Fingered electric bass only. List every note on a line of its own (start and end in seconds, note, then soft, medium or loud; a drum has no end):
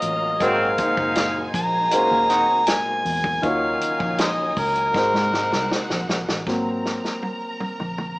0.03 0.37 A1 medium
0.40 0.75 G#1 loud
0.97 1.48 F#1 medium
1.54 1.88 A#1 medium
1.92 muted fingered electric bass stroke soft
2.11 2.45 D#2 medium
3.05 3.39 E2 loud
3.43 3.77 D#2 loud
4.00 4.51 A#1 medium
4.57 4.91 C#2 medium
4.94 5.12 G#1 medium
5.14 5.31 G#2 loud
5.33 5.50 G#1 medium
5.52 5.69 C2 medium
5.91 6.07 A#1 medium
6.09 6.26 A#1 loud
6.29 6.45 A1 medium
6.47 6.98 G#1 loud
7.04 muted fingered electric bass stroke soft
7.61 muted fingered electric bass stroke soft
7.80 8.19 A#1 medium